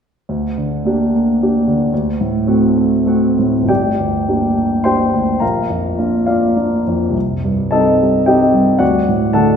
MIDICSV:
0, 0, Header, 1, 2, 480
1, 0, Start_track
1, 0, Key_signature, -2, "minor"
1, 0, Tempo, 559701
1, 242, Time_signature, 3, 2, 24, 8
1, 1194, Tempo, 530973
1, 2154, Tempo, 608519
1, 3594, Tempo, 575264
1, 6474, Tempo, 541516
1, 8099, End_track
2, 0, Start_track
2, 0, Title_t, "Grand piano"
2, 0, Program_c, 0, 0
2, 248, Note_on_c, 0, 38, 27
2, 387, Control_c, 0, 64, 127
2, 494, Note_on_c, 0, 50, 22
2, 730, Note_on_c, 0, 58, 21
2, 742, Note_on_c, 0, 62, 21
2, 745, Note_on_c, 0, 67, 24
2, 870, Note_off_c, 0, 50, 0
2, 940, Note_off_c, 0, 58, 0
2, 946, Note_off_c, 0, 62, 0
2, 948, Note_off_c, 0, 67, 0
2, 986, Note_on_c, 0, 58, 21
2, 1206, Note_off_c, 0, 58, 0
2, 1220, Note_on_c, 0, 58, 21
2, 1230, Note_on_c, 0, 62, 23
2, 1230, Note_on_c, 0, 67, 24
2, 1422, Note_off_c, 0, 58, 0
2, 1428, Note_off_c, 0, 62, 0
2, 1428, Note_off_c, 0, 67, 0
2, 1451, Note_on_c, 0, 50, 23
2, 1633, Note_off_c, 0, 38, 0
2, 1676, Note_off_c, 0, 50, 0
2, 1681, Control_c, 0, 64, 0
2, 1682, Note_on_c, 0, 38, 32
2, 1817, Control_c, 0, 64, 127
2, 1932, Note_on_c, 0, 45, 27
2, 2166, Note_on_c, 0, 57, 26
2, 2169, Note_on_c, 0, 60, 27
2, 2173, Note_on_c, 0, 66, 29
2, 2303, Note_off_c, 0, 45, 0
2, 2370, Note_off_c, 0, 57, 0
2, 2371, Note_off_c, 0, 60, 0
2, 2374, Note_off_c, 0, 66, 0
2, 2404, Note_on_c, 0, 57, 27
2, 2621, Note_off_c, 0, 57, 0
2, 2632, Note_on_c, 0, 57, 28
2, 2641, Note_on_c, 0, 60, 27
2, 2646, Note_on_c, 0, 66, 32
2, 2859, Note_off_c, 0, 57, 0
2, 2864, Note_off_c, 0, 60, 0
2, 2866, Note_off_c, 0, 66, 0
2, 2892, Note_on_c, 0, 45, 25
2, 3079, Note_on_c, 0, 31, 27
2, 3105, Note_off_c, 0, 38, 0
2, 3125, Note_on_c, 0, 79, 40
2, 3132, Note_on_c, 0, 74, 32
2, 3134, Note_off_c, 0, 45, 0
2, 3135, Note_on_c, 0, 67, 33
2, 3142, Control_c, 0, 64, 0
2, 3289, Control_c, 0, 64, 127
2, 3364, Note_on_c, 0, 38, 21
2, 3593, Note_off_c, 0, 67, 0
2, 3599, Note_on_c, 0, 62, 20
2, 3605, Note_on_c, 0, 58, 20
2, 3605, Note_on_c, 0, 67, 21
2, 3739, Note_off_c, 0, 38, 0
2, 3813, Note_off_c, 0, 62, 0
2, 3816, Note_off_c, 0, 58, 0
2, 3817, Note_off_c, 0, 67, 0
2, 3836, Note_on_c, 0, 58, 20
2, 4041, Note_off_c, 0, 74, 0
2, 4056, Note_off_c, 0, 79, 0
2, 4059, Note_off_c, 0, 58, 0
2, 4060, Note_on_c, 0, 84, 49
2, 4068, Note_on_c, 0, 79, 37
2, 4070, Note_on_c, 0, 72, 40
2, 4071, Note_on_c, 0, 58, 21
2, 4075, Note_on_c, 0, 62, 22
2, 4075, Note_on_c, 0, 67, 22
2, 4283, Note_off_c, 0, 58, 0
2, 4285, Note_off_c, 0, 67, 0
2, 4286, Note_off_c, 0, 62, 0
2, 4307, Note_on_c, 0, 38, 21
2, 4483, Note_off_c, 0, 31, 0
2, 4507, Note_off_c, 0, 79, 0
2, 4508, Note_off_c, 0, 72, 0
2, 4527, Note_on_c, 0, 82, 36
2, 4536, Note_off_c, 0, 84, 0
2, 4539, Note_on_c, 0, 34, 27
2, 4539, Note_on_c, 0, 70, 28
2, 4540, Note_on_c, 0, 77, 27
2, 4542, Note_off_c, 0, 38, 0
2, 4559, Control_c, 0, 64, 0
2, 4700, Control_c, 0, 64, 127
2, 4778, Note_on_c, 0, 41, 21
2, 5014, Note_on_c, 0, 62, 21
2, 5017, Note_on_c, 0, 58, 20
2, 5018, Note_on_c, 0, 65, 22
2, 5162, Note_off_c, 0, 41, 0
2, 5224, Note_off_c, 0, 70, 0
2, 5225, Note_off_c, 0, 77, 0
2, 5233, Note_off_c, 0, 62, 0
2, 5234, Note_off_c, 0, 58, 0
2, 5235, Note_off_c, 0, 65, 0
2, 5250, Note_on_c, 0, 77, 38
2, 5251, Note_off_c, 0, 82, 0
2, 5259, Note_on_c, 0, 65, 27
2, 5259, Note_on_c, 0, 74, 28
2, 5261, Note_on_c, 0, 58, 22
2, 5487, Note_off_c, 0, 58, 0
2, 5495, Note_off_c, 0, 65, 0
2, 5500, Note_on_c, 0, 58, 21
2, 5504, Note_on_c, 0, 62, 22
2, 5508, Note_on_c, 0, 65, 25
2, 5712, Note_off_c, 0, 74, 0
2, 5720, Note_off_c, 0, 58, 0
2, 5722, Note_off_c, 0, 62, 0
2, 5724, Note_off_c, 0, 65, 0
2, 5741, Note_off_c, 0, 77, 0
2, 5758, Note_on_c, 0, 41, 21
2, 5944, Note_on_c, 0, 36, 28
2, 5952, Note_off_c, 0, 34, 0
2, 5994, Note_off_c, 0, 41, 0
2, 6002, Control_c, 0, 64, 0
2, 6156, Control_c, 0, 64, 127
2, 6236, Note_on_c, 0, 43, 25
2, 6454, Note_on_c, 0, 81, 46
2, 6464, Note_on_c, 0, 75, 35
2, 6468, Note_on_c, 0, 55, 22
2, 6469, Note_on_c, 0, 69, 38
2, 6471, Note_on_c, 0, 60, 22
2, 6476, Note_on_c, 0, 63, 24
2, 6625, Note_off_c, 0, 43, 0
2, 6693, Note_off_c, 0, 55, 0
2, 6695, Note_off_c, 0, 60, 0
2, 6697, Note_off_c, 0, 63, 0
2, 6732, Note_on_c, 0, 55, 23
2, 6920, Note_off_c, 0, 75, 0
2, 6924, Note_off_c, 0, 69, 0
2, 6945, Note_off_c, 0, 55, 0
2, 6945, Note_on_c, 0, 79, 42
2, 6950, Note_off_c, 0, 81, 0
2, 6957, Note_on_c, 0, 67, 31
2, 6958, Note_on_c, 0, 55, 24
2, 6959, Note_on_c, 0, 75, 33
2, 6962, Note_on_c, 0, 60, 25
2, 6966, Note_on_c, 0, 63, 27
2, 7170, Note_off_c, 0, 55, 0
2, 7173, Note_off_c, 0, 60, 0
2, 7175, Note_off_c, 0, 63, 0
2, 7192, Note_on_c, 0, 43, 23
2, 7374, Note_off_c, 0, 36, 0
2, 7398, Note_off_c, 0, 67, 0
2, 7399, Note_off_c, 0, 75, 0
2, 7409, Note_on_c, 0, 78, 47
2, 7418, Note_on_c, 0, 38, 31
2, 7418, Note_on_c, 0, 74, 36
2, 7420, Note_on_c, 0, 66, 39
2, 7425, Note_off_c, 0, 79, 0
2, 7431, Note_off_c, 0, 43, 0
2, 7446, Control_c, 0, 64, 0
2, 7569, Control_c, 0, 64, 127
2, 7676, Note_on_c, 0, 45, 27
2, 7873, Note_off_c, 0, 74, 0
2, 7875, Note_off_c, 0, 66, 0
2, 7886, Note_off_c, 0, 78, 0
2, 7894, Note_on_c, 0, 81, 51
2, 7900, Note_on_c, 0, 78, 36
2, 7901, Note_on_c, 0, 50, 26
2, 7901, Note_on_c, 0, 69, 39
2, 7904, Note_on_c, 0, 57, 25
2, 7908, Note_on_c, 0, 62, 28
2, 8058, Note_off_c, 0, 45, 0
2, 8099, Note_off_c, 0, 38, 0
2, 8099, Note_off_c, 0, 50, 0
2, 8099, Note_off_c, 0, 57, 0
2, 8099, Note_off_c, 0, 62, 0
2, 8099, Note_off_c, 0, 69, 0
2, 8099, Note_off_c, 0, 78, 0
2, 8099, Note_off_c, 0, 81, 0
2, 8099, End_track
0, 0, End_of_file